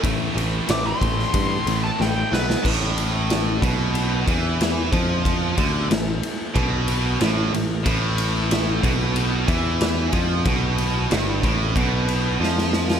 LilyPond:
<<
  \new Staff \with { instrumentName = "Lead electric guitar" } { \time 4/4 \key a \minor \tempo 4 = 92 r4 d'''16 c'''4. a''16 g''8 b'8 | r1 | r1 | r1 |
r1 | }
  \new Staff \with { instrumentName = "Distorted electric guitar" } { \clef bass \time 4/4 \key a \minor <a, e>8 <a, e>8 <a, e>8 <a, e>8 <a, e>8 <a, e>8 <a, e>8 <b, fis b>8 | a,4. b,4 e4 f8~ | f8 d8 a,8 r8 b,4 a,8 a,8 | a,4. b,4 e4 f8 |
b,4 g,8 a,8 b,4 f4 | }
  \new Staff \with { instrumentName = "Distorted electric guitar" } { \clef bass \time 4/4 \key a \minor <a, e a>2.~ <a, e a>8 r8 | a,4. b,4 e4 f8~ | f8 d8 a,8 r8 b,4 a,8 a,8 | a,4. b,4 e4 f8 |
b,4 g,8 a,8 b,4 f4 | }
  \new Staff \with { instrumentName = "Picked electric bass" } { \clef bass \time 4/4 \key a \minor a,,8 a,,8 a,,8 a,,8 g,8 a,,8 a,,8 b,,8 | a,,4. b,,4 e,4 f,8~ | f,8 d,8 a,,8 r8 b,,4 a,,8 a,,8 | a,,4. b,,4 e,4 f,8 |
b,,4 g,,8 a,,8 b,,4 f,4 | }
  \new DrumStaff \with { instrumentName = "Drums" } \drummode { \time 4/4 <bd cymr>8 cymr8 <cymr sn>8 <bd cymr>16 sn16 <bd cymr>8 cymr8 sn8 sn16 sn16 | <cymc bd>8 cymr8 <cymr sn>8 <bd cymr>8 cymr8 <bd cymr>8 <cymr sn>8 <bd cymr>8 | <bd cymr>8 <bd cymr>8 <cymr sn>8 cymr8 <bd cymr>8 cymr8 <cymr sn>8 cymr8 | <bd cymr>8 cymr8 <cymr sn>8 <bd cymr>8 cymr8 <bd cymr>8 <cymr sn>8 <bd cymr>8 |
<bd cymr>8 cymr8 <cymr sn>8 <bd cymr>8 <bd cymr>8 cymr8 sn16 sn16 sn16 sn16 | }
>>